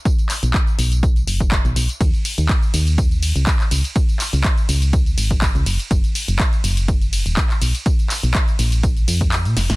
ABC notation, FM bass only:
X:1
M:4/4
L:1/16
Q:"Swing 16ths" 1/4=123
K:Cblyd
V:1 name="FM bass" clef=bass
z3 =B,,, z2 B,,,4 ^F,,,3 B,,, B,,, z | E,, z2 E,, z2 E,,4- E,, D,, z2 D,, z | z3 D,, z2 D,,4 A,,,3 D,, G,,, z | G,,, z2 G,,, z2 G,,,4- G,,, E,,, z2 C,, z |
z3 C,, z2 B,,,4 F,,3 B,, F,,, A,,, |]